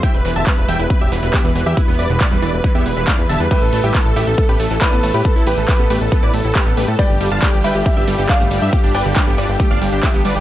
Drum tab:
CC |----------------|----------------|x---------------|----------------|
RD |----------------|----------------|x-x-x-x-x-x-x-x-|x-x-x-x-x-x-x-x-|
HH |xxoxxxoxxxoxxxox|xxoxxxoxxxoxxxox|xxoxxxoxxxoxxxox|xxoxxxoxxxoxxxox|
SH |xxxxxxxxxxxxxxxx|xxxxxxxxxxxxxxxx|xxxxxxxxxxxxxxxx|xxxxxxxxxxxxxxxx|
CP |----x-------x---|----x-------x---|----x-------x---|----x-------x---|
BD |o---o---o---o---|o---o---o---o---|o---o---o---o---|o---o---o---o---|

CC |----------------|----------------|
RD |x-x-x-x-x-x-x-x-|x-x-x-x-x-x-x-x-|
HH |xxoxxxoxxxoxxxox|xxoxxxoxxxoxxxo-|
SH |xxxxxxxxxxxxxxxx|xxxxxxxxxxxxxxxx|
CP |----x-------x---|----x-------x---|
BD |o---o---o---o---|o---o---o---o---|